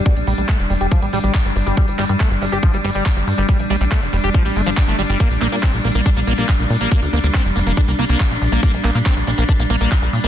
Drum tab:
HH |xxoxxxoxxxoxxxox|xxoxxxoxxxoxxxox|xxoxxxoxxxoxxxox|xxoxxxoxxxoxxxox|
CP |----x-------x---|--x-x-------x---|----x-------x---|--x-x-------x---|
BD |o---o---o---o---|o---o---o---o---|o---o---o---o---|o---o---o---o---|

HH |xxoxxxoxxxoxxxox|xxoxxxoxxxoxxxox|
CP |----x-------x---|--x-x-------x---|
BD |o---o---o---o---|o---o---o---o---|